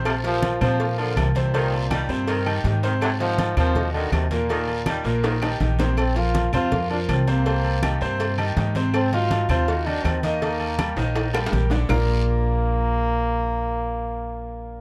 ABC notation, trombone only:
X:1
M:4/4
L:1/8
Q:1/4=162
K:Bb
V:1 name="Trombone"
C, F,2 F,2 D, C, B,,- | B,,4- B,, z3 | C, F,2 F,2 D, C, B,,- | B,,4- B,, z3 |
C F2 F2 D C B,- | B,4- B, z3 | C F2 F2 D C B,- | B,4- B, z3 |
B,8- | B,8 |]